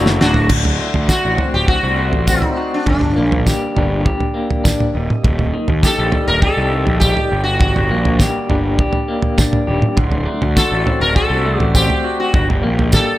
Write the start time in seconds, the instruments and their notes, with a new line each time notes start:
Already playing: picked electric bass F#1, clean electric guitar D2 A2 D3 A3 F#4, sitar A4, tonewheel organ D5 A5
0.06 snare
0.21 picked electric bass D1, sitar D4 F#4, snare
0.34 floor tom
0.49 picked electric bass D1, clean electric guitar D2, tonewheel organ D5 F#5 C6, kick, floor tom, crash
0.65 floor tom
0.79 clean electric guitar A3
0.94 picked electric bass D2, floor tom
1.09 clean electric guitar F#4, sitar F#4, kick, snare, tambourine
1.25 picked electric bass A1
1.38 clean electric guitar C4, floor tom
1.54 picked electric bass D1, sitar G4
1.68 sitar F#4, clean electric guitar F#4, kick, floor tom
1.83 picked electric bass C2
1.99 clean electric guitar A3
2.13 picked electric bass A1, floor tom
2.27 clean electric guitar C4, sitar D#4, kick, floor tom, tambourine
2.42 floor tom
2.57 clean electric guitar F#4
2.74 sitar D4
2.86 picked electric bass G1, clean electric guitar G2, sitar D4, kick, floor tom
3.01 picked electric bass G1, floor tom
3.16 picked electric bass A#1, clean electric guitar A#3
3.31 sitar C4, floor tom
3.46 clean electric guitar G4, kick, snare, mid tom, tambourine
3.77 picked electric bass G1, clean electric guitar D4, floor tom
4.05 clean electric guitar G4, kick, floor tom
4.20 floor tom
4.34 clean electric guitar A#3
4.51 floor tom
4.64 clean electric guitar D4, kick, snare, floor tom, mid tom, tambourine
4.80 floor tom, mid tom
4.95 picked electric bass D#1, clean electric guitar D#2, tonewheel organ D#5
5.10 mid tom
5.24 picked electric bass D#1, clean electric guitar D#2, kick, floor tom
5.39 floor tom
5.54 clean electric guitar D#3
5.68 picked electric bass D#2, floor tom
5.83 clean electric guitar G4, sitar A4, kick, snare, tambourine
5.99 picked electric bass A#1
6.12 clean electric guitar G3, floor tom
6.28 picked electric bass D#1, sitar A#4
6.42 clean electric guitar G4, sitar A4, kick, floor tom
6.57 picked electric bass C2
6.73 clean electric guitar D#3
6.87 picked electric bass A#1, floor tom
7.00 clean electric guitar G3, sitar G4, kick, floor tom, tambourine
7.17 floor tom
7.31 picked electric bass G1, clean electric guitar G2, tonewheel organ D5
7.44 sitar F#4
7.59 clean electric guitar G2, sitar F#4, kick, floor tom
7.76 picked electric bass G1, floor tom
7.90 picked electric bass A#1, clean electric guitar A#3
8.05 floor tom
8.19 clean electric guitar G4, kick, snare, mid tom, tambourine
8.50 picked electric bass G1, clean electric guitar D4, floor tom
8.79 clean electric guitar G4, kick, floor tom
8.93 floor tom
9.08 clean electric guitar A#3
9.22 floor tom
9.38 clean electric guitar D4, kick, snare, floor tom, mid tom, tambourine
9.53 floor tom, mid tom
9.67 picked electric bass D#1, clean electric guitar G4
9.82 mid tom
9.96 picked electric bass D1, clean electric guitar D2, tonewheel organ F#5 C6, kick, floor tom
10.12 floor tom
10.26 clean electric guitar A3
10.42 picked electric bass D2, floor tom
10.56 clean electric guitar F#4, sitar A4, kick, snare, tambourine
10.72 picked electric bass A1
10.86 clean electric guitar C4, floor tom
11.00 picked electric bass D1, sitar A#4
11.15 clean electric guitar F#4, sitar A4, kick, floor tom
11.30 picked electric bass C2
11.45 clean electric guitar A3
11.59 picked electric bass A1, sitar G4, floor tom
11.74 clean electric guitar C4, sitar G4, kick, floor tom, tambourine
11.90 floor tom
12.04 clean electric guitar F#4
12.20 sitar F#4
12.34 picked electric bass G1, clean electric guitar G2, tonewheel organ G5, kick, floor tom
12.50 picked electric bass G1, floor tom
12.63 picked electric bass A#1, clean electric guitar A#3
12.79 floor tom
12.92 clean electric guitar G4, sitar A4, kick, snare, mid tom, tambourine